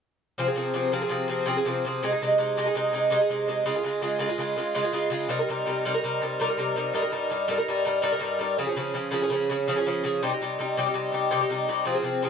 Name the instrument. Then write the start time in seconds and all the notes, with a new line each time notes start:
bouzouki
0.38 C3 F3 C4 G#4
0.48 F3 C4 G#4
0.56 C3 F3 C4 G#4
0.74 C3 F3 C4 G#4
0.92 C3 F3 C4 G#4
1.02 F3 C4 G#4
1.09 C3 F3 C4 G#4
1.28 C3 F3 C4 G#4
1.46 C3 F3 C4 G#4
1.57 F3 C4 G#4
1.65 C3 F3 C4 G#4
1.85 C3 F3 C4 G#4
2.03 C3 G#3 D#4 G#4
2.11 G#3 D#4 G#4
2.22 C3 G#3 D#4 G#4
2.38 C3 G#3 D#4 G#4
2.57 C3 G#3 D#4 G#4
2.66 G#3 D#4 G#4
2.75 C3 G#3 D#4 G#4
2.93 C3 G#3 D#4 G#4
3.10 C3 G#3 D#4 G#4
3.21 G#3 D#4 G#4
3.30 C3 G#3 D#4 G#4
3.47 C3 G#3 D#4 G#4
3.66 C#3 G#3 F4 G#4
3.76 G#3 F4 G#4
3.83 C#3 G#3 F4 G#4
4.01 C#3 G#3 F4 G#4
4.19 C#3 G#3 F4 G#4
4.29 G#3 F4 G#4
4.38 C#3 G#3 F4 G#4
4.56 C#3 G#3 F4 G#4
4.75 C#3 G#3 F4 G#4
4.83 G#3 F4 G#4
4.92 C#3 G#3 F4 G#4
5.10 C#3 G#3 F4 G#4
5.29 C3 G3 D#4 A#4
5.39 G3 D#4 A#4
5.49 C3 G3 D#4 A#4
5.66 C3 G3 D#4 A#4
5.85 C3 G3 D#4 A#4
5.94 G3 D#4 A#4
6.03 C3 G3 D#4 A#4
6.21 C3 G3 D#4 A#4
6.40 C3 G3 D#4 A#4
6.48 G3 D#4 A#4
6.57 C3 G3 D#4 A#4
6.76 C3 G3 D#4 A#4
6.93 G2 G3 D#4 A#4
7.02 G3 D#4 A#4
7.11 G2 G3 D#4 A#4
7.30 G2 G3 D#4 A#4
7.48 G2 G3 D#4 A#4
7.58 G3 D#4 A#4
7.68 G2 G3 D#4 A#4
7.85 G2 G3 D#4 A#4
8.02 G2 G3 D#4 A#4
8.12 G3 D#4 A#4
8.20 G2 G3 D#4 A#4
8.39 G2 G3 D#4 A#4
8.59 C#3 F3 C#4 G#4
8.67 F3 C#4 G#4
8.76 C#3 F3 C#4 G#4
8.94 C#3 F3 C#4 G#4
9.11 C#3 F3 C#4 G#4
9.22 F3 C#4 G#4
9.30 C#3 F3 C#4 G#4
9.49 C#3 F3 C#4 G#4
9.68 C#3 F3 C#4 G#4
9.76 F3 C#4 G#4
9.86 C#3 F3 C#4 G#4
10.03 C#3 F3 C#4 G#4
10.23 C3 G3 D#4 G4
10.31 G3 D#4 G4
10.41 C3 G3 D#4 G4
10.59 C3 G3 D#4 G4
10.77 C3 G3 D#4 G4
10.86 G3 D#4 G4
10.94 C3 G3 D#4 G4
11.12 C3 G3 D#4 G4
11.31 C3 G3 D#4 G4
11.41 G3 D#4 G4
11.49 C3 G3 D#4 G4
11.68 C3 G3 D#4 G4
11.85 C3 F3 C4 G#4
11.95 F3 C4 G#4
12.02 C3 F3 C4 G#4
12.23 C3 F3 C4 G#4